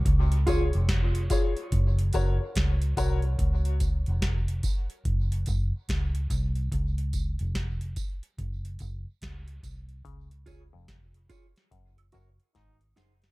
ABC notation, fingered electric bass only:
X:1
M:4/4
L:1/16
Q:"Swing 16ths" 1/4=72
K:Db
V:1 name="Fingered electric bass" clef=bass
D,,3 F,,,3 z2 G,,,2 G,,, z D,,2 C,,2 | D,,3 F,,,3 z2 G,,,2 G,,, z D,,2 C,,2 | D,,3 F,,,3 z2 G,,,2 G,,, z D,,2 C,,2 | D,,3 F,,,3 z2 G,,,2 G,,, z A,,,2 G,,,2 |]